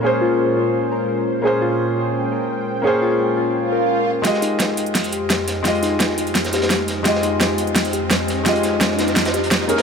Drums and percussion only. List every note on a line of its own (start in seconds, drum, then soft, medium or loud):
4.25 snare soft
4.25 closed hi-hat medium
4.34 snare soft
4.42 closed hi-hat medium
4.60 snare soft
4.60 snare loud
4.60 closed hi-hat medium
4.77 closed hi-hat medium
4.86 closed hi-hat soft
4.95 snare soft
4.95 closed hi-hat medium
4.95 open hi-hat medium
5.04 closed hi-hat soft
5.13 closed hi-hat medium
5.30 snare soft
5.30 snare loud
5.30 closed hi-hat medium
5.48 snare soft
5.48 closed hi-hat medium
5.65 snare soft
5.65 closed hi-hat medium
5.75 closed hi-hat soft
5.83 snare soft
5.83 closed hi-hat medium
6.00 snare medium
6.00 snare loud
6.00 closed hi-hat loud
6.00 closed hi-hat medium
6.10 snare medium
6.18 closed hi-hat medium
6.27 closed hi-hat soft
6.35 snare medium
6.35 closed hi-hat medium
6.44 snare medium
6.44 closed hi-hat soft
6.53 snare loud
6.53 closed hi-hat medium
6.62 snare loud
6.62 closed hi-hat medium
6.70 snare medium
6.70 snare loud
6.70 closed hi-hat medium
6.88 snare soft
6.88 closed hi-hat medium
7.05 snare medium
7.05 closed hi-hat medium
7.15 snare soft
7.23 closed hi-hat medium
7.41 snare medium
7.41 snare loud
7.41 closed hi-hat medium
7.58 closed hi-hat medium
7.67 closed hi-hat soft
7.75 snare medium
7.75 closed hi-hat medium
7.75 open hi-hat medium
7.85 closed hi-hat soft
7.93 closed hi-hat medium
8.11 snare medium
8.11 snare loud
8.11 closed hi-hat medium
8.12 closed hi-hat medium
8.28 snare soft
8.28 closed hi-hat medium
8.30 closed hi-hat medium
8.46 snare medium
8.46 closed hi-hat medium
8.56 closed hi-hat soft
8.63 snare soft
8.63 closed hi-hat medium
8.81 snare medium
8.81 snare loud
8.81 closed hi-hat medium
8.91 snare medium
8.99 snare medium
8.99 closed hi-hat medium
9.08 snare medium
9.08 closed hi-hat soft
9.16 snare medium
9.16 closed hi-hat medium
9.25 snare loud
9.25 closed hi-hat medium
9.25 closed hi-hat soft
9.34 snare soft
9.34 closed hi-hat medium
9.44 closed hi-hat medium
9.51 snare medium
9.51 snare loud
9.51 closed hi-hat medium
9.61 snare soft
9.69 closed hi-hat medium
9.78 snare loud
9.78 closed hi-hat medium